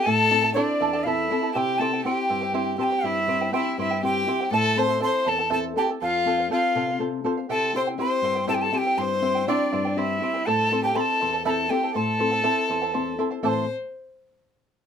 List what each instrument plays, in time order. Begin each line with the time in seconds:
0.03 nylon-string guitar A2, charango E4 E5, violin A4, quena A5
0.07 charango A4 A5
0.31 nylon-string guitar C4 E4 A4, charango E4 A4 E5 A5
0.43 charango E4 A4 A5
0.54 nylon-string guitar C4 E4 A4, violin D4, charango E4 A4 C5 E5 A5, quena D5
0.80 nylon-string guitar E2, charango E4 A4 E5 A5
0.93 charango E4 A4 A5
1.04 nylon-string guitar C4 E4 A4, violin E4, charango E4 A4 E5 A5, quena E5 F5
1.31 nylon-string guitar C4 E4 A4, charango E4 A4 E5 A5
1.43 charango E4 A4 A5
1.53 nylon-string guitar C3, charango E4 G4 C5 E5 G5, violin G4, quena A5
1.58 quena G5
1.79 nylon-string guitar C4 E4 G4, charango E4 C5 E5 G5, violin A4, quena A5
1.93 charango E4 C5 G5
2.04 nylon-string guitar C4 E4 G4, charango E4 C5 E5 G5, violin G4, quena G5
2.30 nylon-string guitar G2, charango E4 C5 E5 G5
2.41 charango E4 C5 G5
2.53 nylon-string guitar C4 E4 G4, charango E4 G4 C5 E5 G5
2.78 nylon-string guitar C4 E4 G4, charango E4 C5 E5 G5, violin G4, quena A5
2.84 quena G5
2.91 charango E4 C5 G5
3.03 nylon-string guitar G2, charango E4 C5 E5 G5, violin E4, quena E5
3.27 nylon-string guitar C4 E4 G4, charango E4 C5 E5 G5
3.41 charango E4 C5 G5
3.52 nylon-string guitar C4 E4 G4, charango E4 G4 C5 E5 G5, violin E4, quena E5
3.78 nylon-string guitar G2, charango E4 C5 E5 G5, violin E4, quena E5
3.91 charango E4 C5 G5
4.02 nylon-string guitar C4 E4 G4, charango E4 C5 E5 G5, violin G4, quena G5
4.27 nylon-string guitar C4 E4 G4, charango E4 C5 E5 G5
4.41 charango E4 C5 G5
4.51 nylon-string guitar A2, charango E4 A4 C5 E5 A5, violin A4, quena A5
4.76 nylon-string guitar C4 E4 A4, charango E4 A4 E5 A5, violin C5, quena C6
4.88 charango E4 A4 A5
5.00 nylon-string guitar C4 E4 A4, charango E4 A4 E5 A5, violin C5, quena C6
5.25 nylon-string guitar E2, charango E4 A4 E5 A5, violin A4, quena A5
5.39 charango E4 A4 A5
5.50 nylon-string guitar C4 E4 A4, charango E4 A4 C5 E5 A5, violin A4, quena A5
5.76 nylon-string guitar C4 E4 A4, charango E4 A4 E5 A5, violin G4, quena G5
5.89 charango E4 A4 A5
6.01 nylon-string guitar F2, violin F4, charango A4 C5 F5, quena F5
6.25 nylon-string guitar C4 F4 A4, charango A4 C5 F5
6.38 charango C5 F5
6.50 nylon-string guitar C4 F4 A4, violin F4, charango A4 C5 F5, quena F5
6.75 nylon-string guitar C3, charango A4 C5 F5
6.88 charango C5 F5
6.99 nylon-string guitar C4 F4 A4, charango A4 C5 F5
7.24 nylon-string guitar C4 F4 A4, charango A4 C5 F5
7.37 charango C5 F5
7.49 nylon-string guitar C3, charango E4 G4 C5 E5 G5, violin A4, quena A5
7.73 nylon-string guitar C4 E4 G4, charango E4 C5 E5 G5, violin C5, quena C6
7.87 charango E4 C5 G5
7.98 nylon-string guitar C4 E4 G4, charango E4 C5 E5 G5, violin C5, quena C6
8.22 nylon-string guitar G2, charango E4 C5 E5 G5
8.35 charango E4 C5 G5
8.47 nylon-string guitar C4 E4 G4, charango E4 G4 C5 E5 G5, violin A4, quena A5
8.54 violin G4, quena G5
8.62 violin A4, quena A5
8.72 nylon-string guitar C4 E4 G4, charango E4 C5 E5 G5, violin G4, quena A5
8.78 quena G5
8.85 charango E4 C5 G5
8.97 nylon-string guitar G2, charango E4 C5 E5 G5, violin C5, quena C6
9.21 nylon-string guitar C4 E4 G4, charango E4 C5 E5 G5
9.35 charango E4 C5 G5
9.47 nylon-string guitar C4 E4 G4, violin D4, charango E4 G4 C5 E5 G5, quena D5
9.72 nylon-string guitar G2, charango E4 C5 E5 G5
9.85 charango E4 C5 G5
9.96 nylon-string guitar C4 E4 G4, violin E4, charango E4 C5 E5 G5, quena E5
10.21 nylon-string guitar C4 E4 G4, charango E4 C5 E5 G5
10.34 charango E4 C5 G5
10.46 nylon-string guitar A2, charango E4 A4 C5 E5 A5, violin A4, quena A5
10.71 nylon-string guitar C4 E4 A4, charango E4 C5 E5 A5
10.84 charango E4 C5 A5, violin G4, quena G5
10.95 nylon-string guitar C4 E4 A4, charango E4 C5 E5 A5, violin A4, quena B5
11.00 quena A5
11.20 nylon-string guitar E2, charango E4 C5 E5 A5
11.33 charango E4 C5 A5
11.45 nylon-string guitar C4 E4 A4, charango E4 A4 C5 E5 A5, violin A4, quena B5
11.50 quena A5
11.70 nylon-string guitar C4 E4 A4, charango E4 C5 E5 A5, violin G4, quena G5
11.83 charango E4 C5 A5
11.95 nylon-string guitar A2, charango E4 C5 E5 A5, violin A4, quena A5
12.19 nylon-string guitar C4 E4 A4, charango E4 C5 E5 A5
12.32 charango E4 C5 A5
12.43 nylon-string guitar C4 E4 A4, charango E4 A4 C5 E5 A5
12.69 nylon-string guitar E2, charango E4 C5 E5 A5
12.82 charango E4 C5 A5
12.93 nylon-string guitar C4 E4 A4, charango E4 C5 E5 A5
13.18 nylon-string guitar C4 E4 A4, charango E4 C5 E5 A5
13.31 charango E4 C5 A5
13.43 nylon-string guitar A2 E3 C4 A4 E5 A5, charango E4 A4 C5 E5 A5, violin C5, quena D6
13.48 quena C6